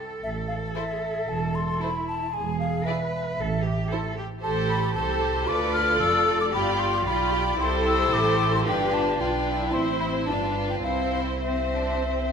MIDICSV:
0, 0, Header, 1, 7, 480
1, 0, Start_track
1, 0, Tempo, 525855
1, 217, Time_signature, 4, 2, 24, 8
1, 7417, Tempo, 538600
1, 9337, Tempo, 574163
1, 11044, End_track
2, 0, Start_track
2, 0, Title_t, "Flute"
2, 0, Program_c, 0, 73
2, 213, Note_on_c, 0, 76, 58
2, 268, Note_off_c, 0, 76, 0
2, 437, Note_on_c, 0, 77, 61
2, 492, Note_off_c, 0, 77, 0
2, 690, Note_on_c, 0, 76, 54
2, 1176, Note_on_c, 0, 81, 61
2, 1189, Note_off_c, 0, 76, 0
2, 1417, Note_on_c, 0, 84, 69
2, 1431, Note_off_c, 0, 81, 0
2, 1657, Note_on_c, 0, 83, 76
2, 1670, Note_off_c, 0, 84, 0
2, 1894, Note_off_c, 0, 83, 0
2, 1899, Note_on_c, 0, 81, 69
2, 2134, Note_on_c, 0, 80, 68
2, 2148, Note_off_c, 0, 81, 0
2, 2366, Note_off_c, 0, 80, 0
2, 2371, Note_on_c, 0, 77, 69
2, 2604, Note_on_c, 0, 76, 58
2, 2618, Note_off_c, 0, 77, 0
2, 3804, Note_off_c, 0, 76, 0
2, 4049, Note_on_c, 0, 81, 75
2, 4104, Note_off_c, 0, 81, 0
2, 4285, Note_on_c, 0, 83, 82
2, 4507, Note_off_c, 0, 83, 0
2, 4512, Note_on_c, 0, 81, 73
2, 4998, Note_on_c, 0, 86, 80
2, 5011, Note_off_c, 0, 81, 0
2, 5228, Note_off_c, 0, 86, 0
2, 5233, Note_on_c, 0, 89, 85
2, 5466, Note_off_c, 0, 89, 0
2, 5471, Note_on_c, 0, 88, 86
2, 5827, Note_off_c, 0, 88, 0
2, 5848, Note_on_c, 0, 86, 70
2, 5900, Note_off_c, 0, 86, 0
2, 5968, Note_on_c, 0, 83, 76
2, 6202, Note_on_c, 0, 84, 83
2, 6216, Note_off_c, 0, 83, 0
2, 6442, Note_off_c, 0, 84, 0
2, 6448, Note_on_c, 0, 83, 78
2, 6920, Note_off_c, 0, 83, 0
2, 6937, Note_on_c, 0, 84, 80
2, 7172, Note_off_c, 0, 84, 0
2, 7184, Note_on_c, 0, 88, 84
2, 7423, Note_on_c, 0, 86, 83
2, 7436, Note_off_c, 0, 88, 0
2, 7779, Note_off_c, 0, 86, 0
2, 7795, Note_on_c, 0, 84, 77
2, 7845, Note_off_c, 0, 84, 0
2, 7908, Note_on_c, 0, 79, 85
2, 8140, Note_on_c, 0, 81, 78
2, 8153, Note_off_c, 0, 79, 0
2, 8378, Note_on_c, 0, 79, 71
2, 8391, Note_off_c, 0, 81, 0
2, 8839, Note_on_c, 0, 84, 75
2, 8852, Note_off_c, 0, 79, 0
2, 9081, Note_off_c, 0, 84, 0
2, 9087, Note_on_c, 0, 83, 71
2, 9142, Note_off_c, 0, 83, 0
2, 9319, Note_on_c, 0, 81, 76
2, 9673, Note_off_c, 0, 81, 0
2, 9685, Note_on_c, 0, 79, 60
2, 9735, Note_off_c, 0, 79, 0
2, 9798, Note_on_c, 0, 77, 70
2, 10112, Note_off_c, 0, 77, 0
2, 10281, Note_on_c, 0, 76, 50
2, 11044, Note_off_c, 0, 76, 0
2, 11044, End_track
3, 0, Start_track
3, 0, Title_t, "Violin section"
3, 0, Program_c, 1, 48
3, 686, Note_on_c, 1, 72, 43
3, 759, Note_off_c, 1, 72, 0
3, 1659, Note_on_c, 1, 72, 41
3, 1732, Note_off_c, 1, 72, 0
3, 2620, Note_on_c, 1, 74, 46
3, 2693, Note_off_c, 1, 74, 0
3, 3573, Note_on_c, 1, 72, 44
3, 3646, Note_off_c, 1, 72, 0
3, 4040, Note_on_c, 1, 72, 58
3, 4484, Note_off_c, 1, 72, 0
3, 4517, Note_on_c, 1, 72, 60
3, 4987, Note_off_c, 1, 72, 0
3, 5004, Note_on_c, 1, 74, 68
3, 5945, Note_off_c, 1, 74, 0
3, 5956, Note_on_c, 1, 74, 64
3, 6433, Note_off_c, 1, 74, 0
3, 6444, Note_on_c, 1, 74, 62
3, 6918, Note_off_c, 1, 74, 0
3, 6929, Note_on_c, 1, 72, 75
3, 7896, Note_off_c, 1, 72, 0
3, 7897, Note_on_c, 1, 71, 63
3, 8361, Note_off_c, 1, 71, 0
3, 8372, Note_on_c, 1, 71, 59
3, 8839, Note_off_c, 1, 71, 0
3, 8847, Note_on_c, 1, 72, 58
3, 9330, Note_on_c, 1, 71, 50
3, 9336, Note_off_c, 1, 72, 0
3, 9798, Note_on_c, 1, 72, 54
3, 9805, Note_off_c, 1, 71, 0
3, 10275, Note_off_c, 1, 72, 0
3, 10285, Note_on_c, 1, 72, 52
3, 11044, Note_off_c, 1, 72, 0
3, 11044, End_track
4, 0, Start_track
4, 0, Title_t, "Cello section"
4, 0, Program_c, 2, 48
4, 0, Note_on_c, 2, 69, 52
4, 1625, Note_off_c, 2, 69, 0
4, 1653, Note_on_c, 2, 64, 54
4, 2139, Note_off_c, 2, 64, 0
4, 2140, Note_on_c, 2, 68, 55
4, 2607, Note_off_c, 2, 68, 0
4, 2612, Note_on_c, 2, 71, 59
4, 3088, Note_on_c, 2, 69, 61
4, 3091, Note_off_c, 2, 71, 0
4, 3329, Note_off_c, 2, 69, 0
4, 3329, Note_on_c, 2, 67, 55
4, 3565, Note_on_c, 2, 69, 61
4, 3570, Note_off_c, 2, 67, 0
4, 3807, Note_on_c, 2, 67, 57
4, 3808, Note_off_c, 2, 69, 0
4, 3880, Note_off_c, 2, 67, 0
4, 4042, Note_on_c, 2, 69, 67
4, 4503, Note_off_c, 2, 69, 0
4, 4514, Note_on_c, 2, 69, 62
4, 4986, Note_off_c, 2, 69, 0
4, 4997, Note_on_c, 2, 71, 70
4, 5466, Note_off_c, 2, 71, 0
4, 5474, Note_on_c, 2, 69, 71
4, 5948, Note_off_c, 2, 69, 0
4, 5955, Note_on_c, 2, 67, 67
4, 6433, Note_off_c, 2, 67, 0
4, 6441, Note_on_c, 2, 65, 66
4, 6677, Note_on_c, 2, 67, 61
4, 6684, Note_off_c, 2, 65, 0
4, 6750, Note_off_c, 2, 67, 0
4, 6924, Note_on_c, 2, 69, 70
4, 7875, Note_off_c, 2, 69, 0
4, 7890, Note_on_c, 2, 67, 64
4, 8367, Note_on_c, 2, 65, 58
4, 8371, Note_off_c, 2, 67, 0
4, 8439, Note_off_c, 2, 65, 0
4, 8608, Note_on_c, 2, 64, 60
4, 9322, Note_off_c, 2, 64, 0
4, 9333, Note_on_c, 2, 62, 56
4, 9805, Note_on_c, 2, 60, 49
4, 9806, Note_off_c, 2, 62, 0
4, 11044, Note_off_c, 2, 60, 0
4, 11044, End_track
5, 0, Start_track
5, 0, Title_t, "Violin section"
5, 0, Program_c, 3, 48
5, 691, Note_on_c, 3, 69, 43
5, 764, Note_off_c, 3, 69, 0
5, 1650, Note_on_c, 3, 69, 40
5, 1723, Note_off_c, 3, 69, 0
5, 2620, Note_on_c, 3, 68, 45
5, 2693, Note_off_c, 3, 68, 0
5, 3586, Note_on_c, 3, 69, 42
5, 3660, Note_off_c, 3, 69, 0
5, 4048, Note_on_c, 3, 69, 56
5, 4488, Note_off_c, 3, 69, 0
5, 4524, Note_on_c, 3, 69, 56
5, 4991, Note_off_c, 3, 69, 0
5, 5003, Note_on_c, 3, 69, 59
5, 5942, Note_off_c, 3, 69, 0
5, 5967, Note_on_c, 3, 67, 60
5, 6430, Note_off_c, 3, 67, 0
5, 6441, Note_on_c, 3, 67, 61
5, 6911, Note_off_c, 3, 67, 0
5, 6922, Note_on_c, 3, 67, 60
5, 7874, Note_off_c, 3, 67, 0
5, 7888, Note_on_c, 3, 65, 59
5, 8358, Note_off_c, 3, 65, 0
5, 8369, Note_on_c, 3, 65, 54
5, 8835, Note_on_c, 3, 64, 52
5, 8838, Note_off_c, 3, 65, 0
5, 9330, Note_off_c, 3, 64, 0
5, 9335, Note_on_c, 3, 65, 51
5, 9803, Note_on_c, 3, 64, 54
5, 9807, Note_off_c, 3, 65, 0
5, 10286, Note_on_c, 3, 60, 50
5, 10291, Note_off_c, 3, 64, 0
5, 10514, Note_off_c, 3, 60, 0
5, 10540, Note_on_c, 3, 62, 54
5, 10779, Note_off_c, 3, 62, 0
5, 10779, Note_on_c, 3, 60, 54
5, 11044, Note_off_c, 3, 60, 0
5, 11044, End_track
6, 0, Start_track
6, 0, Title_t, "Viola section"
6, 0, Program_c, 4, 48
6, 688, Note_on_c, 4, 64, 44
6, 761, Note_off_c, 4, 64, 0
6, 1652, Note_on_c, 4, 64, 45
6, 1725, Note_off_c, 4, 64, 0
6, 2621, Note_on_c, 4, 64, 50
6, 2694, Note_off_c, 4, 64, 0
6, 3573, Note_on_c, 4, 64, 46
6, 3646, Note_off_c, 4, 64, 0
6, 4044, Note_on_c, 4, 67, 60
6, 4487, Note_off_c, 4, 67, 0
6, 4518, Note_on_c, 4, 67, 60
6, 4988, Note_off_c, 4, 67, 0
6, 4993, Note_on_c, 4, 65, 57
6, 5944, Note_off_c, 4, 65, 0
6, 5955, Note_on_c, 4, 65, 62
6, 6433, Note_off_c, 4, 65, 0
6, 6443, Note_on_c, 4, 65, 64
6, 6917, Note_off_c, 4, 65, 0
6, 6931, Note_on_c, 4, 64, 59
6, 7879, Note_off_c, 4, 64, 0
6, 7899, Note_on_c, 4, 62, 63
6, 8363, Note_off_c, 4, 62, 0
6, 8374, Note_on_c, 4, 62, 59
6, 8841, Note_off_c, 4, 62, 0
6, 8846, Note_on_c, 4, 60, 57
6, 9336, Note_off_c, 4, 60, 0
6, 9339, Note_on_c, 4, 62, 49
6, 9800, Note_off_c, 4, 62, 0
6, 9813, Note_on_c, 4, 60, 53
6, 10286, Note_off_c, 4, 60, 0
6, 10295, Note_on_c, 4, 60, 55
6, 11044, Note_off_c, 4, 60, 0
6, 11044, End_track
7, 0, Start_track
7, 0, Title_t, "Double bass section"
7, 0, Program_c, 5, 48
7, 212, Note_on_c, 5, 33, 57
7, 612, Note_off_c, 5, 33, 0
7, 1169, Note_on_c, 5, 28, 53
7, 1576, Note_off_c, 5, 28, 0
7, 2143, Note_on_c, 5, 28, 57
7, 2539, Note_off_c, 5, 28, 0
7, 3087, Note_on_c, 5, 33, 61
7, 3488, Note_off_c, 5, 33, 0
7, 4046, Note_on_c, 5, 33, 58
7, 4487, Note_off_c, 5, 33, 0
7, 4524, Note_on_c, 5, 36, 56
7, 5000, Note_off_c, 5, 36, 0
7, 5000, Note_on_c, 5, 38, 68
7, 5477, Note_off_c, 5, 38, 0
7, 5479, Note_on_c, 5, 29, 58
7, 5960, Note_off_c, 5, 29, 0
7, 5960, Note_on_c, 5, 31, 58
7, 6445, Note_off_c, 5, 31, 0
7, 6445, Note_on_c, 5, 35, 54
7, 6923, Note_on_c, 5, 36, 64
7, 6928, Note_off_c, 5, 35, 0
7, 7404, Note_off_c, 5, 36, 0
7, 7412, Note_on_c, 5, 33, 57
7, 7892, Note_on_c, 5, 31, 58
7, 7894, Note_off_c, 5, 33, 0
7, 8367, Note_on_c, 5, 35, 49
7, 8371, Note_off_c, 5, 31, 0
7, 8841, Note_on_c, 5, 33, 59
7, 8847, Note_off_c, 5, 35, 0
7, 9329, Note_on_c, 5, 31, 52
7, 9333, Note_off_c, 5, 33, 0
7, 9803, Note_on_c, 5, 36, 52
7, 9804, Note_off_c, 5, 31, 0
7, 11044, Note_off_c, 5, 36, 0
7, 11044, End_track
0, 0, End_of_file